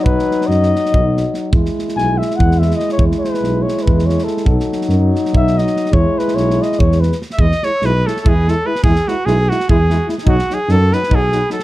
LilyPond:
<<
  \new Staff \with { instrumentName = "Flugelhorn" } { \time 7/8 \key e \major \tempo 4 = 144 b'4 dis''2~ dis''8 | r4 gis''8 e''8 fis''8 e''8 dis''8 | cis''8 b'4 cis''8 b'8 cis''8 a'8~ | a'4 r4 e''8 dis''4 |
cis''8 b'8 cis''8 dis''8 cis''8 b'8 r8 | r2. r8 | r2. r8 | r2. r8 | }
  \new Staff \with { instrumentName = "Cornet" } { \time 7/8 \key e \major r2. r8 | r2. r8 | r2. r8 | r2. r8 |
r2. r16. e''32 | dis''8 cis''8 b'8 a'16. a'32 gis'8 a'8 b'8 | gis'8 fis'8 gis'8 fis'8 gis'4~ gis'32 r16. | fis'8 gis'8 a'8 b'8 gis'4 a'8 | }
  \new Staff \with { instrumentName = "Euphonium" } { \time 7/8 \key e \major dis'2. r8 | e'2.~ e'8~ | e'2.~ e'8 | dis'2.~ dis'8 |
e'2. r8 | e'8 e'8 e'8 e'8 e'8 e'8 e'8 | e'8 e'8 e'8 e'8 e'8 e'8 e'8 | dis'8 dis'8 dis'8 dis'8 dis'8 dis'8 dis'8 | }
  \new Staff \with { instrumentName = "Trombone" } { \clef bass \time 7/8 \key e \major fis2. r8 | gis2.~ gis8~ | gis2.~ gis8 | fis2.~ fis8 |
gis2. r8 | gis8 gis8 gis8 gis8 gis8 gis8 gis8 | gis8 gis8 gis8 gis8 gis8 gis8 gis8 | fis8 fis8 fis8 fis8 fis8 fis8 fis8 | }
  \new Staff \with { instrumentName = "Tuba" } { \clef bass \time 7/8 \key e \major b,,8 r8 fis,4 b,,4. | e,8 r8 b,,4 e,4. | e,8 r8 b,,4 e,4. | b,,8 r8 fis,4 b,,4. |
e,8 r8 b,,4 e,4. | e,8 r8 b,,4 e,4. | e,8 r8 b,,4 e,4. | b,,8 r8 fis,4 b,,4. | }
  \new DrumStaff \with { instrumentName = "Drums" } \drummode { \time 7/8 bd16 sn16 sn16 sn16 sn16 sn16 sn16 sn16 bd8 sn8 sn8 | bd16 sn16 sn16 sn16 sn8 sn16 sn16 bd16 sn16 sn16 sn16 sn16 sn16 | bd16 sn16 sn16 sn16 sn8 sn16 sn16 bd16 sn16 sn16 sn16 sn16 sn16 | bd16 sn16 sn16 sn16 sn8 sn16 sn16 bd16 sn16 sn16 sn16 sn16 sn16 |
bd8 sn16 sn16 sn16 sn16 sn16 sn16 bd16 sn16 sn16 sn16 sn16 sn16 | bd16 sn16 sn8 sn8 sn16 sn16 bd8 sn8. sn16 | bd16 sn16 sn8 sn8 sn16 sn16 bd8 sn8 sn16 sn16 | bd16 sn16 sn8 sn8 sn16 sn16 bd8 sn8 sn16 sn16 | }
>>